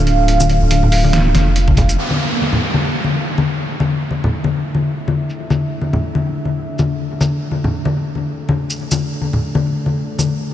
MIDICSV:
0, 0, Header, 1, 5, 480
1, 0, Start_track
1, 0, Key_signature, -1, "minor"
1, 0, Tempo, 425532
1, 318, Time_signature, 4, 2, 24, 8
1, 11887, End_track
2, 0, Start_track
2, 0, Title_t, "Analog synth pad"
2, 0, Program_c, 0, 89
2, 0, Note_on_c, 0, 62, 83
2, 0, Note_on_c, 0, 69, 80
2, 0, Note_on_c, 0, 77, 98
2, 2192, Note_off_c, 0, 62, 0
2, 2192, Note_off_c, 0, 69, 0
2, 2194, Note_off_c, 0, 77, 0
2, 2237, Note_on_c, 0, 62, 81
2, 2237, Note_on_c, 0, 69, 73
2, 2237, Note_on_c, 0, 76, 93
2, 9872, Note_off_c, 0, 76, 0
2, 9920, Note_on_c, 0, 74, 90
2, 11887, Note_off_c, 0, 62, 0
2, 11887, Note_off_c, 0, 69, 0
2, 11887, Note_off_c, 0, 74, 0
2, 11887, End_track
3, 0, Start_track
3, 0, Title_t, "Sub bass"
3, 0, Program_c, 1, 38
3, 0, Note_on_c, 1, 26, 90
3, 675, Note_off_c, 1, 26, 0
3, 691, Note_on_c, 1, 26, 105
3, 1509, Note_off_c, 1, 26, 0
3, 1516, Note_on_c, 1, 29, 81
3, 2224, Note_off_c, 1, 29, 0
3, 11887, End_track
4, 0, Start_track
4, 0, Title_t, "Downlifter"
4, 0, Program_c, 2, 103
4, 2238, Note_on_c, 2, 60, 65
4, 6078, Note_off_c, 2, 60, 0
4, 11887, End_track
5, 0, Start_track
5, 0, Title_t, "Drums"
5, 77, Note_on_c, 9, 42, 55
5, 190, Note_off_c, 9, 42, 0
5, 318, Note_on_c, 9, 42, 83
5, 431, Note_off_c, 9, 42, 0
5, 453, Note_on_c, 9, 82, 77
5, 454, Note_on_c, 9, 63, 93
5, 558, Note_on_c, 9, 42, 54
5, 565, Note_off_c, 9, 82, 0
5, 567, Note_off_c, 9, 63, 0
5, 671, Note_off_c, 9, 42, 0
5, 794, Note_on_c, 9, 63, 64
5, 798, Note_on_c, 9, 42, 84
5, 907, Note_off_c, 9, 63, 0
5, 911, Note_off_c, 9, 42, 0
5, 935, Note_on_c, 9, 64, 74
5, 1037, Note_on_c, 9, 46, 89
5, 1048, Note_off_c, 9, 64, 0
5, 1150, Note_off_c, 9, 46, 0
5, 1175, Note_on_c, 9, 63, 96
5, 1277, Note_on_c, 9, 38, 111
5, 1277, Note_on_c, 9, 42, 83
5, 1288, Note_off_c, 9, 63, 0
5, 1390, Note_off_c, 9, 38, 0
5, 1390, Note_off_c, 9, 42, 0
5, 1519, Note_on_c, 9, 38, 57
5, 1519, Note_on_c, 9, 42, 57
5, 1521, Note_on_c, 9, 63, 55
5, 1632, Note_off_c, 9, 38, 0
5, 1632, Note_off_c, 9, 42, 0
5, 1634, Note_off_c, 9, 63, 0
5, 1757, Note_on_c, 9, 42, 82
5, 1870, Note_off_c, 9, 42, 0
5, 1891, Note_on_c, 9, 36, 106
5, 1893, Note_on_c, 9, 63, 85
5, 1996, Note_off_c, 9, 36, 0
5, 1996, Note_on_c, 9, 36, 62
5, 1999, Note_on_c, 9, 42, 57
5, 2003, Note_on_c, 9, 64, 86
5, 2006, Note_off_c, 9, 63, 0
5, 2109, Note_off_c, 9, 36, 0
5, 2112, Note_off_c, 9, 42, 0
5, 2116, Note_off_c, 9, 64, 0
5, 2133, Note_on_c, 9, 42, 40
5, 2133, Note_on_c, 9, 82, 52
5, 2238, Note_on_c, 9, 49, 75
5, 2245, Note_off_c, 9, 42, 0
5, 2245, Note_off_c, 9, 82, 0
5, 2350, Note_off_c, 9, 49, 0
5, 2371, Note_on_c, 9, 63, 78
5, 2373, Note_on_c, 9, 82, 69
5, 2484, Note_off_c, 9, 63, 0
5, 2485, Note_off_c, 9, 82, 0
5, 2723, Note_on_c, 9, 63, 56
5, 2836, Note_off_c, 9, 63, 0
5, 2849, Note_on_c, 9, 64, 67
5, 2962, Note_off_c, 9, 64, 0
5, 3090, Note_on_c, 9, 63, 94
5, 3203, Note_off_c, 9, 63, 0
5, 3432, Note_on_c, 9, 63, 59
5, 3545, Note_off_c, 9, 63, 0
5, 3812, Note_on_c, 9, 63, 90
5, 3813, Note_on_c, 9, 82, 43
5, 3924, Note_off_c, 9, 63, 0
5, 3925, Note_off_c, 9, 82, 0
5, 4288, Note_on_c, 9, 63, 93
5, 4292, Note_on_c, 9, 82, 68
5, 4400, Note_off_c, 9, 63, 0
5, 4405, Note_off_c, 9, 82, 0
5, 4632, Note_on_c, 9, 63, 60
5, 4745, Note_off_c, 9, 63, 0
5, 4781, Note_on_c, 9, 64, 70
5, 4894, Note_off_c, 9, 64, 0
5, 5011, Note_on_c, 9, 63, 81
5, 5124, Note_off_c, 9, 63, 0
5, 5353, Note_on_c, 9, 63, 66
5, 5466, Note_off_c, 9, 63, 0
5, 5728, Note_on_c, 9, 63, 83
5, 5841, Note_off_c, 9, 63, 0
5, 5972, Note_on_c, 9, 82, 47
5, 6085, Note_off_c, 9, 82, 0
5, 6207, Note_on_c, 9, 63, 94
5, 6211, Note_on_c, 9, 82, 72
5, 6320, Note_off_c, 9, 63, 0
5, 6324, Note_off_c, 9, 82, 0
5, 6559, Note_on_c, 9, 63, 65
5, 6672, Note_off_c, 9, 63, 0
5, 6691, Note_on_c, 9, 64, 72
5, 6804, Note_off_c, 9, 64, 0
5, 6938, Note_on_c, 9, 63, 81
5, 7050, Note_off_c, 9, 63, 0
5, 7278, Note_on_c, 9, 63, 59
5, 7390, Note_off_c, 9, 63, 0
5, 7652, Note_on_c, 9, 82, 47
5, 7659, Note_on_c, 9, 63, 91
5, 7764, Note_off_c, 9, 82, 0
5, 7772, Note_off_c, 9, 63, 0
5, 8128, Note_on_c, 9, 63, 90
5, 8131, Note_on_c, 9, 82, 71
5, 8241, Note_off_c, 9, 63, 0
5, 8244, Note_off_c, 9, 82, 0
5, 8475, Note_on_c, 9, 63, 66
5, 8588, Note_off_c, 9, 63, 0
5, 8620, Note_on_c, 9, 64, 69
5, 8732, Note_off_c, 9, 64, 0
5, 8859, Note_on_c, 9, 63, 88
5, 8972, Note_off_c, 9, 63, 0
5, 9196, Note_on_c, 9, 63, 55
5, 9309, Note_off_c, 9, 63, 0
5, 9573, Note_on_c, 9, 63, 91
5, 9685, Note_off_c, 9, 63, 0
5, 9812, Note_on_c, 9, 82, 50
5, 9925, Note_off_c, 9, 82, 0
5, 10052, Note_on_c, 9, 82, 79
5, 10055, Note_on_c, 9, 63, 91
5, 10165, Note_off_c, 9, 82, 0
5, 10168, Note_off_c, 9, 63, 0
5, 10393, Note_on_c, 9, 63, 60
5, 10506, Note_off_c, 9, 63, 0
5, 10527, Note_on_c, 9, 64, 63
5, 10640, Note_off_c, 9, 64, 0
5, 10772, Note_on_c, 9, 63, 91
5, 10884, Note_off_c, 9, 63, 0
5, 11122, Note_on_c, 9, 63, 63
5, 11234, Note_off_c, 9, 63, 0
5, 11489, Note_on_c, 9, 63, 78
5, 11493, Note_on_c, 9, 82, 49
5, 11601, Note_off_c, 9, 63, 0
5, 11606, Note_off_c, 9, 82, 0
5, 11887, End_track
0, 0, End_of_file